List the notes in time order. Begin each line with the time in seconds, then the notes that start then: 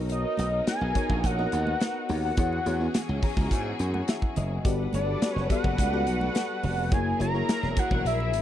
Already playing: B1 B3 D#4 F#4 A#4 C#5
0.09 D#5, closed hi-hat, muted conga
0.37 B1, closed hi-hat, high conga
0.67 G#5, snare, closed hi-hat, muted conga, high conga
0.81 B1, muted conga
0.95 B3 D#4 F#4 A#4 C#5, kick, closed hi-hat, low conga
1.10 A#1, kick
1.24 A#1 F#5, kick, closed hi-hat, high conga
1.38 B3 D#4 F#4 A#4 D#5, muted conga
1.52 D#2, closed hi-hat
1.67 high conga
1.80 snare, closed hi-hat
2.09 D#2, open hi-hat, low conga
2.25 F#5
2.37 E2 E3 B3 C#4 E4 F#4 G#4 C#5, kick, closed hi-hat, muted conga, low conga
2.53 muted conga
2.66 E2 B3 E4 F#4 G#4 C#5, closed hi-hat, high conga
2.80 B3 E4 F#4 G#4 C#5
2.94 snare, closed hi-hat, muted conga, high conga
3.09 C#2
3.22 A#5, kick, open hi-hat, low conga
3.37 C#2, kick
3.51 G#2 G#5, kick, closed hi-hat, high conga
3.79 F#2, closed hi-hat
3.94 F#5, high conga
4.08 E5, snare, closed hi-hat
4.22 kick, muted conga
4.36 F#1 D#5, closed hi-hat, low conga
4.65 G1 G3 B3 F#4 G4 A4 B4 D5 F#5, kick, closed hi-hat, muted conga
4.93 G1 D5, closed hi-hat, high conga
5.22 snare, closed hi-hat, high conga
5.33 F#1 C#5
5.37 snare
5.50 B3 F#4 G4 A4 D5 F#5, kick, closed hi-hat, low conga
5.64 F#1, kick
5.78 C#2, kick, closed hi-hat, high conga
5.92 B3 F#4 G4 A4 D5, muted conga
6.07 B1, closed hi-hat
6.21 high conga
6.35 snare, closed hi-hat, muted conga
6.63 F1, open hi-hat, low conga
6.91 F#1 F#3 A#3 E4 F#4 G#4 A#4 C#5 G#5, kick, closed hi-hat, muted conga
7.19 F#1 A#3 E4 F#4 G#4 C#5 A#5, closed hi-hat, high conga
7.34 A#3 E4 F#4 G#4 C#5
7.49 snare, closed hi-hat, high conga
7.63 E1, snare, muted conga
7.76 F#5, kick, closed hi-hat, low conga
7.91 E1, kick
8.05 A#1 E5, closed hi-hat, muted conga, high conga
8.20 muted conga
8.33 G#1, closed hi-hat